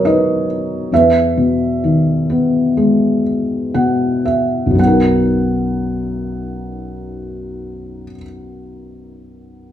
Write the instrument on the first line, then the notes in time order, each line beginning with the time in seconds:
felt piano
Already playing: B2 F#3 D#4 F#4 A#4 B4 C#5 D#5
0.05 D#4 B4 D#5
0.92 E2 B4 E5
1.37 B2
1.84 D#3
2.30 B3
2.77 G#3
3.74 B2 F#5
4.25 E5
4.66 B1
4.70 F#2
4.75 F#3 B3
4.79 F#5
4.84 D#4 A#4